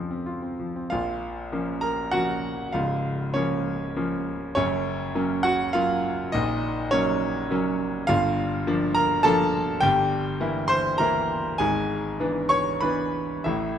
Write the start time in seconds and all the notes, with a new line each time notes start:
Already playing: F2 F3 C4 C#4 A4 A5
0.11 C4
0.26 F4
0.42 C4
0.60 F3
0.76 C4
0.90 A#1 A#2 F4 F5
1.52 F3 A#3 C#4
1.81 A#4 A#5
2.12 F3 A#3 C#4 F#4 F#5
2.73 C#1 C#2 F4 F5
3.34 F3 A#3 C#4 C#5
3.96 F3 A#3 C#4
4.55 F#1 F#2 C#4 C#5
5.15 F#3 A#3 C#4
5.43 F#4 F#5
5.73 F#3 A#3 C#4 F4 F5
6.32 A#1 A#2 D#4 D#5
6.91 F#3 A#3 C#4 C#5
7.51 F#3 A#3 C#4
8.07 G1 G2 F4 F5
8.67 F3 A#3 D4
8.95 A#4 A#5
9.23 F3 A#3 D4 A4 A5
9.80 G1 G2 G4 G5
10.40 E3 A#3 E4
10.68 C5 C6
10.98 E3 A#3 E4 A#4 A#5
11.58 G#1 G#2 G#4 G#5
12.20 E3 B3 D4
12.49 C#5 C#6
12.81 E3 B3 D4 B4 B5
13.44 A1 A2 E4 E5